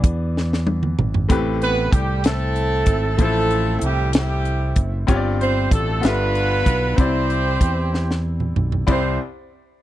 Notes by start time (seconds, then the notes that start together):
Already playing: E3 B3 D4
0.04 E2, kick, closed hi-hat
0.37 snare
0.53 snare
0.67 high tom
0.83 mid tom
0.99 G#1, mid tom
1.14 floor tom
1.29 A1 A2 A3 C4 G4 B4, kick, closed hi-hat
1.61 B3 B4, closed hi-hat
1.93 C2 G3 G4, kick, closed hi-hat
2.24 A3 C4 E4 A4, snare, closed hi-hat
2.56 closed hi-hat
2.86 G#1, kick, closed hi-hat
3.17 A1 A2 F3 A3 E4 C5, kick, closed hi-hat
3.21 A3 C4 E4 A4
3.51 closed hi-hat
3.81 C2 G3 G4, closed hi-hat
4.13 G3 C4 E4 G4, snare, closed hi-hat
4.45 closed hi-hat
4.76 F#1, kick, closed hi-hat
5.07 G1 G2 C4 F4 G4 C#5, kick, closed hi-hat
5.16 D5
5.41 C4 C5, closed hi-hat
5.71 A1 A3 A4, kick, closed hi-hat
6.00 G1 G2 B3 F4 A4 B4 E5, closed hi-hat
6.05 D4, snare
6.35 closed hi-hat
6.66 B1, kick, closed hi-hat
6.96 C2 C3 C4 E4 G4 C5 D5 B5, kick, closed hi-hat
7.30 closed hi-hat
7.61 E2, kick, closed hi-hat
7.94 snare
8.11 snare
8.40 mid tom
8.56 B1, floor tom
8.72 floor tom
8.87 C2 C4 E4 C5 D5 B5, kick, crash